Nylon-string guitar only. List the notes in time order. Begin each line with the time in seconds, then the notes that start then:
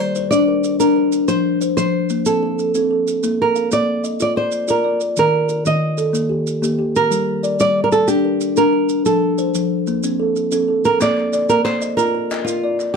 Already playing: C5
0.31 D5
0.80 A#4
1.28 C5
1.77 C5
2.26 A4
3.42 A#4
3.73 D5
4.22 D5
4.37 C5
4.70 A#4
5.19 A#4
5.67 D#5
6.96 A#4
7.61 D5
7.84 A#4
7.92 A4
8.08 G4
8.57 A#4
9.06 A4
10.85 A#4
11.02 D5
11.49 A#4
11.65 C5
11.97 A#4
12.44 F4